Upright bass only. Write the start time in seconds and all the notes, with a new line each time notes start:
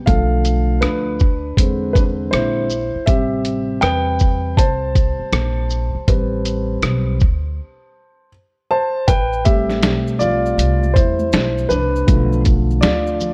0.08 B1
0.83 D2
1.57 E2
2.33 A#1
2.95 muted upright bass stroke
3.08 A1
3.83 E2
4.58 C2
5.19 muted upright bass stroke
5.32 A#1
5.95 muted upright bass stroke
6.08 A1
6.83 B1
7.22 D2
9.08 A1
9.83 B1
10.58 C2
10.96 E2
11.33 B1
11.70 C2
12.08 B1
12.83 D2